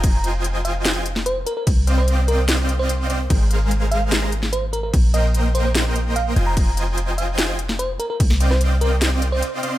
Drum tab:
CC |x---------------|x---------------|x---------------|x---------------|
HH |x-x-x-x-x-x-x-x-|x-x-x-x-x-x-x-x-|x-x-x-x-x-x-x-x-|x-x-x-x-x-x-x-x-|
SD |--------o--o----|--------o-------|--------o--o----|--------o-------|
BD |o---------------|o---------------|o---------------|o---------------|

CC |x---------------|x---------------|
HH |x-x-x-x-x-x-x-x-|x-x-x-x-x-x-x-x-|
SD |--------o--o----|-o-o----o-------|
BD |o---------------|o---------------|